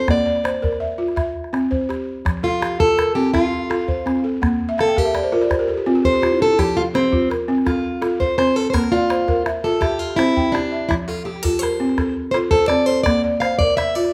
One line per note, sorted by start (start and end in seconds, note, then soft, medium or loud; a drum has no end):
0.00 0.26 A4 medium
0.08 0.44 A#3 medium
0.08 0.78 D5 medium
0.08 calabash thump medium
0.08 calabash click medium
0.17 calabash click soft
0.26 0.80 D5 medium
0.26 calabash click soft
0.36 calabash click soft
0.44 0.99 C5 medium
0.44 calabash click medium
0.55 calabash click soft
0.62 0.99 A#4 medium
0.62 calabash thump medium
0.73 calabash click soft
0.80 1.15 E5 medium
0.98 1.17 F4 medium
1.08 calabash click soft
1.16 1.71 E5 medium
1.16 calabash thump medium
1.16 calabash click medium
1.26 calabash click soft
1.44 calabash click soft
1.53 1.89 C4 medium
1.53 calabash click medium
1.71 2.25 C5 medium
1.71 calabash thump medium
1.71 calabash click soft
1.89 2.25 G4 medium
1.89 calabash click soft
2.25 2.61 F3 medium
2.25 calabash thump medium
2.25 calabash click medium
2.43 2.77 F4 medium
2.43 2.98 A4 medium
2.61 3.16 G4 medium
2.61 calabash click medium
2.71 calabash click soft
2.79 3.15 F4 medium
2.79 3.13 A4 loud
2.79 calabash thump medium
2.97 3.52 A#4 medium
2.97 calabash click medium
3.15 3.52 C4 medium
3.15 3.32 G4 medium
3.26 calabash click soft
3.34 4.20 F4 medium
3.34 3.69 A4 medium
3.34 calabash thump soft
3.34 calabash click medium
3.70 4.24 F4 medium
3.70 4.06 A4 medium
3.70 calabash click medium
3.88 4.42 C5 medium
3.88 calabash thump medium
4.06 4.42 C4 medium
4.06 calabash click medium
4.16 calabash click soft
4.24 4.60 A4 medium
4.42 4.78 A#3 medium
4.42 calabash thump medium
4.42 calabash click medium
4.69 4.86 E5 medium
4.78 4.98 A4 medium
4.78 4.95 F5 medium
4.78 calabash click medium
4.87 5.04 G5 medium
4.87 calabash click soft
4.96 5.87 G4 medium
4.96 5.31 A#4 medium
4.96 5.13 F5 medium
4.96 calabash thump medium
5.05 5.22 E5 medium
5.14 5.31 D5 medium
5.14 calabash click medium
5.23 5.40 C5 medium
5.32 5.50 F4 medium
5.32 5.49 A#4 medium
5.42 5.58 D5 medium
5.42 calabash click soft
5.50 5.67 C5 medium
5.50 calabash thump soft
5.50 calabash click medium
5.59 5.76 A#4 medium
5.68 5.85 A4 medium
5.77 5.94 G4 medium
5.86 6.22 C4 medium
5.86 6.03 F4 medium
5.95 6.12 G4 medium
6.04 6.21 A4 medium
6.04 6.42 C5 loud
6.04 calabash thump medium
6.13 6.21 G4 medium
6.22 6.39 F4 medium
6.22 6.58 G4 medium
6.22 calabash click medium
6.31 6.48 E4 medium
6.31 calabash click soft
6.40 6.57 D4 medium
6.40 6.59 A4 loud
6.49 6.66 E4 medium
6.59 6.95 F3 medium
6.59 6.77 G4 medium
6.59 calabash thump medium
6.59 calabash click medium
6.77 6.82 F4 medium
6.77 7.31 A4 medium
6.94 7.28 C4 medium
6.94 7.48 G4 medium
6.94 calabash click medium
7.04 calabash click soft
7.12 7.48 F4 medium
7.12 calabash thump medium
7.30 7.84 A#4 medium
7.30 calabash click medium
7.48 7.84 C4 medium
7.58 calabash click soft
7.66 8.22 F4 medium
7.66 8.00 A4 medium
7.66 calabash thump medium
7.66 calabash click medium
8.02 8.56 F4 medium
8.02 8.38 A4 medium
8.02 calabash click medium
8.20 8.74 C5 medium
8.20 8.37 C5 medium
8.20 calabash thump medium
8.38 8.74 C4 medium
8.38 8.56 C5 medium
8.38 calabash click medium
8.47 calabash click soft
8.56 8.70 A4 medium
8.56 8.92 A4 medium
8.70 8.92 A#4 medium
8.70 8.73 C5 medium
8.74 9.10 A#3 medium
8.74 calabash thump medium
8.74 calabash click medium
8.84 calabash click soft
8.92 9.42 F4 medium
8.92 9.46 D5 medium
9.10 9.64 C5 medium
9.10 calabash click medium
9.28 9.64 A#4 medium
9.28 calabash thump medium
9.28 calabash click soft
9.37 calabash click soft
9.46 9.81 E5 medium
9.46 calabash click medium
9.64 9.82 F4 medium
9.64 9.83 A4 medium
9.81 9.99 G4 medium
9.81 10.36 E5 medium
9.81 calabash thump medium
9.81 calabash click medium
9.92 calabash click soft
9.99 10.18 F4 medium
10.10 calabash click soft
10.16 10.54 C4 medium
10.16 10.54 E4 medium
10.16 10.72 C5 medium
10.16 calabash click medium
10.37 10.90 G5 medium
10.37 calabash thump medium
10.52 10.90 D4 medium
10.52 10.90 G4 medium
10.52 calabash click medium
10.72 11.08 E5 medium
10.89 11.26 F3 medium
10.89 10.94 E4 medium
10.89 calabash thump medium
10.89 calabash click medium
11.08 11.25 F4 medium
11.08 11.62 A4 medium
11.25 11.43 G4 medium
11.25 11.80 G4 medium
11.36 calabash click soft
11.43 11.80 F4 medium
11.43 11.59 A4 medium
11.43 calabash thump medium
11.59 12.16 A#4 medium
11.59 12.14 C5 loud
11.63 calabash click medium
11.80 12.16 C4 medium
11.89 calabash click soft
11.98 12.33 A4 medium
11.98 calabash thump medium
11.98 calabash click medium
12.31 12.88 F4 medium
12.31 12.70 A4 medium
12.31 12.37 C5 medium
12.31 calabash click medium
12.51 12.67 A4 medium
12.51 13.06 C5 medium
12.51 calabash thump medium
12.68 13.06 C4 medium
12.68 12.86 D5 medium
12.68 calabash click medium
12.79 calabash click soft
12.86 13.24 A4 medium
12.86 13.03 C5 medium
13.03 13.42 A#3 medium
13.03 13.21 D5 medium
13.03 calabash thump medium
13.03 calabash click medium
13.24 13.78 D5 medium
13.40 13.96 C5 medium
13.40 13.58 F5 medium
13.40 calabash click medium
13.51 calabash click soft
13.59 13.96 A#4 medium
13.59 13.76 D5 loud
13.59 calabash thump medium
13.77 13.95 E5 loud
13.77 14.12 E5 medium
13.77 calabash click medium
13.95 14.13 F4 medium
13.95 14.13 D5 medium
14.04 calabash click soft